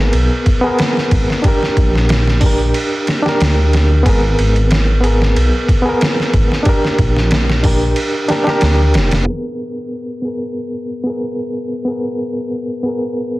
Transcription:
0.00 0.11 G#1 medium
0.00 0.61 B3 medium
0.00 0.64 G#4 medium
0.00 0.67 A#4 medium
0.13 0.29 B1 medium
0.13 ride medium
0.46 kick medium
0.46 ride medium
0.61 1.39 B3 medium
0.61 1.41 G#4 medium
0.67 1.42 A#4 medium
0.79 snare loud
0.79 ride medium
0.97 snare soft
1.11 1.27 G#1 loud
1.11 kick medium
1.11 ride medium
1.30 snare soft
1.42 2.37 D4 medium
1.42 2.39 G4 medium
1.42 kick loud
1.42 ride medium
1.48 2.40 A#4 medium
1.63 snare soft
1.77 2.72 A#1 medium
1.77 kick medium
1.77 ride medium
1.95 snare soft
2.09 snare loud
2.09 ride medium
2.27 snare medium
2.41 3.20 D4 medium
2.41 3.21 G4 medium
2.41 kick medium
2.41 open hi-hat medium
2.46 3.22 A#4 medium
2.74 ride medium
3.07 snare soft
3.07 ride medium
3.23 4.00 D4 medium
3.23 4.02 G4 medium
3.23 snare medium
3.29 4.04 A#4 loud
3.41 4.03 D2 medium
3.41 snare loud
3.41 ride medium
3.73 snare medium
3.73 ride medium
4.03 4.35 G#1 loud
4.03 4.98 B3 medium
4.03 5.00 G#4 medium
4.03 kick loud
4.03 ride medium
4.09 5.01 A#4 medium
4.39 5.34 G#1 medium
4.39 ride medium
4.56 ride soft
4.71 snare loud
4.71 ride medium
5.01 5.80 B3 medium
5.01 5.82 G#4 medium
5.01 ride medium
5.07 5.83 A#4 medium
5.22 snare soft
5.36 5.51 B1 medium
5.36 ride medium
5.68 kick medium
5.68 ride medium
5.82 6.61 B3 medium
5.82 6.62 G#4 medium
5.89 6.64 A#4 loud
6.01 snare loud
6.01 ride medium
6.20 snare soft
6.33 6.49 G#1 medium
6.33 kick medium
6.33 ride medium
6.52 snare soft
6.63 7.59 D4 medium
6.63 7.60 G4 medium
6.63 kick loud
6.63 ride medium
6.69 7.62 A#4 loud
6.85 snare soft
6.99 7.94 A#1 medium
6.99 kick medium
6.99 ride medium
7.17 snare soft
7.31 snare loud
7.31 ride medium
7.50 snare medium
7.63 8.26 D4 medium
7.63 8.26 G4 medium
7.63 8.27 A#4 medium
7.63 kick medium
7.63 open hi-hat medium
7.96 ride medium
8.28 8.42 D4 medium
8.28 8.43 G4 medium
8.28 8.43 A#4 medium
8.28 snare soft
8.28 ride medium
8.44 9.22 D4 medium
8.44 9.24 G4 medium
8.44 snare soft
8.50 9.25 A#4 medium
8.61 8.96 D2 medium
8.61 snare loud
8.61 ride medium
8.94 9.10 F1 medium
8.94 snare loud
8.94 ride medium
9.11 9.25 F1 medium
9.11 snare loud
9.11 ride medium
9.24 10.19 B3 medium
9.24 10.21 G#4 medium
9.30 10.23 A#4 medium
10.22 11.02 B3 medium
10.22 11.03 G#4 medium
10.28 11.05 A#4 medium
11.04 11.82 B3 medium
11.04 11.84 G#4 medium
11.10 11.85 A#4 medium
11.85 12.80 B3 medium
11.85 12.82 G#4 medium
11.91 12.83 A#4 medium
12.83 13.40 B3 medium
12.83 13.40 G#4 medium
12.89 13.40 A#4 medium

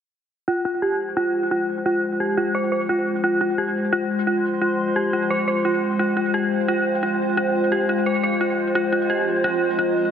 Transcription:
0.48 10.11 F4 medium
0.48 0.57 F4 medium
0.48 10.11 F4 medium
0.48 10.11 C5 medium
0.48 10.11 G5 medium
0.59 10.11 G#3 medium
0.59 10.11 C5 medium
0.65 0.70 F4 medium
0.82 0.91 G4 medium
1.17 1.22 F4 loud
1.51 1.60 F4 medium
1.86 1.95 F4 medium
2.20 2.29 G4 medium
2.37 2.46 F4 medium
2.55 2.60 C5 medium
2.72 2.81 C5 medium
2.89 2.98 F4 medium
3.24 3.32 F4 medium
3.24 5.98 C6 medium
3.41 3.46 F4 medium
3.58 3.67 G4 medium
3.75 6.53 C6 medium
3.93 3.98 F4 medium
4.27 4.36 F4 medium
4.62 4.70 F4 medium
4.96 5.05 G4 medium
5.13 5.22 F4 medium
5.30 5.36 C5 medium
5.48 5.57 C5 medium
5.65 5.74 F4 medium
5.99 6.08 F4 medium
6.17 6.22 F4 medium
6.34 6.43 G4 medium
6.68 6.74 F4 medium
7.03 7.12 F4 medium
7.37 7.46 F4 medium
7.72 7.81 G4 medium
7.89 7.98 F4 medium
8.06 8.12 C5 medium
8.23 8.32 C5 medium
8.41 8.50 F4 medium
8.75 8.84 F4 medium
8.75 10.11 A#5 medium
8.92 8.98 F4 medium
9.10 9.19 G4 medium
9.26 10.11 D#5 medium
9.44 9.50 F4 loud
9.79 9.88 F4 medium

